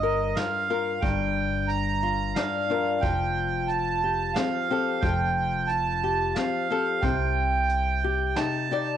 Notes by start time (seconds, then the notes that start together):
Already playing: G1 G2 D4 D#5
0.03 A#4
0.35 F4 F5, snare, closed hi-hat
0.70 F4 A#4
1.01 G1 G2 G5, kick, closed hi-hat
1.68 A#5, closed hi-hat
2.03 F4
2.34 D4 F5, snare, closed hi-hat
2.70 D4 F4 A#4
3.01 F1 F3 G5, kick, closed hi-hat
3.68 A5, closed hi-hat
4.04 G4
4.34 C4 F5, snare, closed hi-hat
4.70 C4 G4 A4
5.01 F1 F3 G5, kick, closed hi-hat
5.67 A5, closed hi-hat
6.04 G4
6.35 C4 F5, snare, closed hi-hat
6.70 C4 G4 A4
7.01 C2 C3 G5, kick, closed hi-hat
7.69 closed hi-hat
8.04 G4
8.36 D#4 A5, snare, closed hi-hat
8.71 D#4 G4 D5